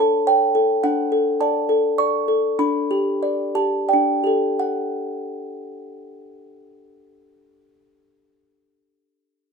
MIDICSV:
0, 0, Header, 1, 2, 480
1, 0, Start_track
1, 0, Key_signature, 2, "major"
1, 0, Tempo, 568720
1, 699, Time_signature, 3, 2, 24, 8
1, 1671, Tempo, 619195
1, 2631, Tempo, 663717
1, 3111, Tempo, 710900
1, 6923, End_track
2, 0, Start_track
2, 0, Title_t, "Music box"
2, 0, Program_c, 0, 10
2, 0, Note_on_c, 0, 62, 55
2, 0, Note_on_c, 0, 69, 50
2, 0, Note_on_c, 0, 73, 51
2, 0, Note_on_c, 0, 81, 84
2, 134, Note_off_c, 0, 73, 0
2, 219, Note_off_c, 0, 81, 0
2, 228, Note_on_c, 0, 73, 50
2, 229, Note_on_c, 0, 79, 84
2, 370, Note_off_c, 0, 69, 0
2, 464, Note_on_c, 0, 69, 49
2, 604, Note_off_c, 0, 73, 0
2, 667, Note_off_c, 0, 62, 0
2, 681, Note_off_c, 0, 79, 0
2, 700, Note_off_c, 0, 69, 0
2, 705, Note_on_c, 0, 78, 84
2, 707, Note_on_c, 0, 62, 60
2, 945, Note_on_c, 0, 69, 51
2, 1163, Note_off_c, 0, 78, 0
2, 1186, Note_on_c, 0, 81, 91
2, 1190, Note_on_c, 0, 74, 51
2, 1329, Note_off_c, 0, 69, 0
2, 1428, Note_on_c, 0, 69, 49
2, 1577, Note_off_c, 0, 74, 0
2, 1655, Note_off_c, 0, 81, 0
2, 1673, Note_on_c, 0, 74, 50
2, 1674, Note_on_c, 0, 85, 98
2, 1812, Note_off_c, 0, 69, 0
2, 1905, Note_on_c, 0, 69, 48
2, 2047, Note_off_c, 0, 74, 0
2, 2114, Note_off_c, 0, 62, 0
2, 2124, Note_off_c, 0, 85, 0
2, 2142, Note_off_c, 0, 69, 0
2, 2144, Note_on_c, 0, 62, 61
2, 2145, Note_on_c, 0, 83, 76
2, 2390, Note_on_c, 0, 67, 47
2, 2637, Note_on_c, 0, 74, 46
2, 2775, Note_off_c, 0, 67, 0
2, 2841, Note_off_c, 0, 83, 0
2, 2871, Note_on_c, 0, 67, 43
2, 2873, Note_on_c, 0, 81, 74
2, 3015, Note_off_c, 0, 74, 0
2, 3104, Note_off_c, 0, 81, 0
2, 3114, Note_on_c, 0, 74, 40
2, 3115, Note_on_c, 0, 79, 63
2, 3138, Note_off_c, 0, 62, 0
2, 3146, Note_on_c, 0, 62, 50
2, 3253, Note_off_c, 0, 67, 0
2, 3350, Note_on_c, 0, 67, 39
2, 3371, Note_on_c, 0, 69, 40
2, 3493, Note_off_c, 0, 74, 0
2, 3571, Note_off_c, 0, 79, 0
2, 3590, Note_off_c, 0, 67, 0
2, 3593, Note_on_c, 0, 78, 51
2, 5746, Note_off_c, 0, 62, 0
2, 5971, Note_off_c, 0, 69, 0
2, 6192, Note_off_c, 0, 78, 0
2, 6923, End_track
0, 0, End_of_file